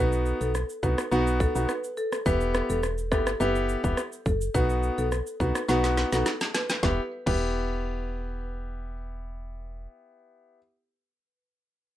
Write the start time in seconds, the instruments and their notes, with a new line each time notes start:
Already playing: fm bass B1, grand piano B3 D#4 F#4, marimba B4
0.12 shaker
0.26 shaker
0.41 fm bass B1, marimba A4, shaker
0.55 cross-stick, shaker
0.70 shaker
0.83 fm bass C2, grand piano B3 D#4 F#4, marimba B4, kick, shaker
0.98 cross-stick, shaker
1.11 fm bass B1, grand piano B3 D#4 F#4, shaker
1.27 shaker
1.40 marimba A4, kick, shaker
1.55 fm bass B1, grand piano B3 D#4 F#4, shaker
1.69 marimba B4, cross-stick, shaker
1.84 shaker
1.97 marimba A4, shaker
2.12 cross-stick, shaker
2.26 fm bass E1, grand piano B3 E4 G4, marimba B4, kick, shaker
2.41 shaker
2.54 cross-stick, shaker
2.70 fm bass E1, marimba A4, shaker
2.83 cross-stick, shaker
2.98 shaker
3.11 fm bass G1, grand piano B3 E4 G4, marimba A4, kick, cross-stick, shaker
3.27 cross-stick, shaker
3.40 fm bass F#1, grand piano B3 E4 G4, marimba B4, shaker
3.56 shaker
3.69 shaker
3.84 fm bass E1, grand piano B3 E4 G4, kick, shaker
3.97 cross-stick, shaker
4.12 shaker
4.26 fm bass F#1, marimba A4, kick, shaker
4.41 shaker
4.54 fm bass B1, grand piano B3 D#4 F#4, marimba B4, kick, shaker
4.70 shaker
4.83 shaker
4.98 fm bass B1, marimba A4, shaker
5.12 cross-stick, shaker
5.27 shaker
5.40 fm bass C2, grand piano B3 D#4 F#4, marimba B4, kick, shaker
5.55 cross-stick, shaker
5.68 fm bass B1, grand piano B3 D#4 F#4, marimba B4, snare, shaker
5.84 snare, shaker
5.97 snare, shaker
6.12 fm bass B1, grand piano B3 D#4 F#4, marimba A4, snare, shaker
6.26 snare, shaker
6.41 snare, shaker
6.54 marimba B4, snare, shaker
6.70 snare, shaker
6.83 fm bass E1, grand piano B3 E4 G4, marimba B4, kick, snare
7.26 fm bass E1, grand piano B3 E4 G4, marimba B4, kick, crash